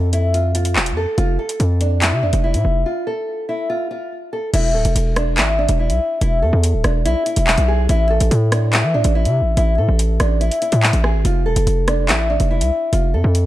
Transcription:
Already playing: F2 A4
0.13 E4, closed hi-hat
0.34 F4, closed hi-hat
0.55 F4, closed hi-hat
0.65 closed hi-hat
0.76 E1, clap
0.86 closed hi-hat
0.92 F2
0.97 A4
1.18 F1 F4, closed hi-hat
1.39 A4
1.49 closed hi-hat
1.60 F2, closed hi-hat
1.81 D4, closed hi-hat
2.02 E4, clap, closed hi-hat
2.12 C3
2.23 F2 D4
2.33 F1, closed hi-hat
2.44 E4
2.54 A2, closed hi-hat
2.65 F1
2.86 F4
3.07 A4
3.49 E4
3.70 F4
3.91 F4
4.33 A4
4.54 E1 E4, closed hi-hat, crash
4.74 D1 A4
4.85 E1, closed hi-hat
4.96 E1, closed hi-hat
5.16 D4, cross-stick, closed hi-hat
5.37 G#1 E4, clap, closed hi-hat
5.58 D4
5.69 E1, closed hi-hat
5.79 E4
5.90 B1, closed hi-hat
6.21 E1 E4, closed hi-hat
6.42 E2 A4
6.53 E2
6.63 closed hi-hat
6.74 D1
6.84 E1 D4, cross-stick, closed hi-hat
7.05 B1 E4, closed hi-hat
7.26 E4, closed hi-hat
7.36 E1, closed hi-hat
7.47 clap
7.58 B1, closed hi-hat
7.68 G#4
7.89 A1 E4, closed hi-hat
8.10 A4
8.20 A1, closed hi-hat
8.31 A2, closed hi-hat
8.52 D4, cross-stick, closed hi-hat
8.73 E4, clap, closed hi-hat
8.84 E3
8.94 A2 D4
9.04 A1, closed hi-hat
9.15 E4
9.25 C3, closed hi-hat
9.41 A1
9.57 A1 E4, closed hi-hat
9.78 A2 A4
9.89 A1
9.99 closed hi-hat
10.20 A1 D4, cross-stick, closed hi-hat
10.41 E4, closed hi-hat
10.51 closed hi-hat
10.62 E4, closed hi-hat
10.72 A2, closed hi-hat
10.83 clap
10.93 A1, closed hi-hat
11.04 G#4, cross-stick
11.14 G#1
11.25 F1 F4, closed hi-hat
11.46 E1 A4
11.56 F1, closed hi-hat
11.67 F1, closed hi-hat
11.88 D4, cross-stick, closed hi-hat
12.09 A1 E4, clap, closed hi-hat
12.30 D4
12.40 F1, closed hi-hat
12.51 E4
12.61 C2, closed hi-hat
12.93 F1 F4, closed hi-hat
13.14 F2 A4
13.24 F2
13.35 closed hi-hat

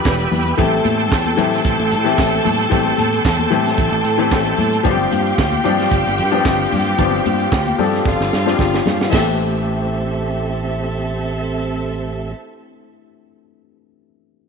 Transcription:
Already playing: E3 G3 B3 D4 F4 G4 A4 B4 G5 B5 E6
0.05 E1, kick, snare, clap, muted conga
0.19 closed hi-hat, muted conga
0.31 E2, open hi-hat, high conga, low conga
0.46 closed hi-hat
0.57 A1 E3 A3 C4 G4 A4 G5 A5 C6, kick, closed hi-hat, low conga
0.73 closed hi-hat
0.85 A2, closed hi-hat, high conga
0.99 closed hi-hat
1.12 E2, kick, snare, clap
1.26 closed hi-hat, high conga
1.37 A2 E3 A3 C4 G4, closed hi-hat, low conga
1.53 snare, closed hi-hat
1.65 A1, kick, closed hi-hat
1.79 A1, closed hi-hat, muted conga
1.91 A2, closed hi-hat
2.04 E3 A3 C4 G4, closed hi-hat
2.18 A1, kick, snare, clap, muted conga
2.33 muted conga
2.45 A2, open hi-hat, high conga, low conga
2.60 closed hi-hat
2.70 A1 E3 A3 C4 G4, kick, closed hi-hat, muted conga, low conga
2.86 closed hi-hat, muted conga
2.98 A2, closed hi-hat, high conga
3.13 closed hi-hat
3.25 E2, kick, snare, clap, muted conga
3.39 closed hi-hat, muted conga, high conga
3.50 A2 E3 A3 C4 G4, closed hi-hat, low conga
3.66 snare, closed hi-hat
3.78 A1, kick, closed hi-hat, muted conga
3.92 A1
4.04 A2, closed hi-hat
4.18 E3 A3 C4 G4, closed hi-hat
4.32 A1, kick, snare, clap, muted conga
4.45 closed hi-hat, muted conga
4.58 A2, open hi-hat, high conga, low conga
4.73 closed hi-hat
4.83 G1 F3 B3 D4 G4 F5 G5, kick, closed hi-hat, low conga
4.90 C4
4.99 muted conga
5.12 G2, closed hi-hat, high conga
5.26 closed hi-hat
5.38 D2, kick, snare, clap
5.53 closed hi-hat, muted conga, high conga
5.64 G2 F3 C4 D4 G4, closed hi-hat, low conga
5.79 snare, closed hi-hat
5.92 G1, kick, closed hi-hat, muted conga
6.06 G1, closed hi-hat, muted conga
6.18 G2, closed hi-hat
6.32 F3 B3 D4 G4, closed hi-hat
6.38 C4
6.45 G1, kick, snare, clap, muted conga
6.73 G2, open hi-hat, high conga, low conga
6.86 closed hi-hat
6.98 G1 F3 B3 D4 G4, kick, closed hi-hat, low conga
7.04 C4
7.26 G2, closed hi-hat, high conga
7.40 closed hi-hat
7.52 D2, kick, snare, clap, muted conga
7.67 closed hi-hat, muted conga, high conga
7.78 G2 F3 C4 D4 A4, open hi-hat, low conga
7.93 snare, closed hi-hat
8.05 G1 F4 F5, kick, snare, muted conga
8.20 G1, snare
8.33 G2, snare
8.45 F3 C4 D4 F4, snare
8.54 G4
8.59 G1, kick, snare
8.74 snare, muted conga
8.86 G2, snare, high conga, low conga
9.01 snare
9.09 A1 E3 A3 C4 G4 A4 C5 E5, kick, crash, high conga
9.13 C4 G4, snare

